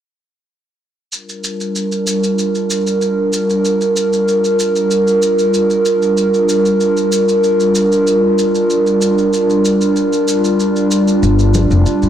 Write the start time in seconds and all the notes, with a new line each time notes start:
1.12 G3 D4 F4 A#4, shaker
1.29 shaker
1.44 shaker
1.61 shaker
1.76 shaker
1.92 shaker
2.07 shaker
2.24 shaker
2.39 shaker
2.55 shaker
2.70 shaker
2.87 shaker
3.02 shaker
3.33 shaker
3.50 shaker
3.65 shaker
3.81 shaker
3.97 shaker
4.13 shaker
4.28 shaker
4.45 shaker
4.60 shaker
4.76 shaker
4.91 shaker
5.07 shaker
5.22 shaker
5.39 shaker
5.54 shaker
5.70 shaker
5.86 shaker
6.02 shaker
6.17 shaker
6.34 shaker
6.49 shaker
6.66 shaker
6.81 shaker
6.97 shaker
7.12 shaker
7.29 shaker
7.44 shaker
7.60 shaker
7.75 shaker
7.92 shaker
8.07 shaker
8.39 shaker
8.55 shaker
8.70 shaker
8.87 shaker
9.02 shaker
9.18 shaker
9.33 shaker
9.50 shaker
9.65 shaker
9.81 shaker
9.96 shaker
10.13 shaker
10.28 shaker
10.45 shaker
10.60 shaker
10.76 shaker
10.91 shaker
11.08 shaker
11.23 G1 D5, shaker
11.39 shaker
11.54 high conga, shaker
11.71 F1, shaker
11.86 shaker
12.03 G2, shaker